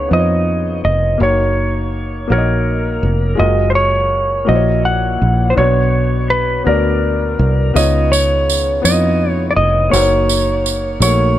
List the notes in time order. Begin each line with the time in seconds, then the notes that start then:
Already playing: C#3 B3 D#4 F4 C#5
0.09 F2 B3 D#4 F4
0.13 C5 D#5
0.19 C#5
0.85 F1 D#5
1.18 F#1 A#3 D#4 F#4
1.22 C#5
2.28 A#1 A#3 D#4 F#4 C#5
2.32 A#4 C#5
2.38 D#5
3.03 F1
3.35 G#3 F4 F#4
3.39 F#1 A#4 D#5
3.70 C5
3.75 C#5
4.45 A#1 A#2 A#3 E4 F#4 C5 D#5
4.55 C#5
4.85 F#5
5.22 A#1
5.50 C5
5.55 B1 B2 B3 D4 F#4 C#5
5.59 C#5
6.30 B4
6.64 D2 B3 D4 F#4 A#4
6.68 D5
7.39 C2
7.74 C#2 C#3 B3 D#4 F4 C#5 D#5, tambourine
8.12 C#5, tambourine
8.50 tambourine
8.82 F2 B3 D#4 E4 C#5 D#5, tambourine
8.91 F4
9.30 C#5
9.51 D5
9.56 F1 D#5
9.90 F#1 A#3 D#4 F#4 C#5, tambourine
9.94 C5
10.01 C#5
10.29 tambourine
10.66 tambourine
11.00 A#1 A3 D#4 F#4 C#5, tambourine
11.06 A#3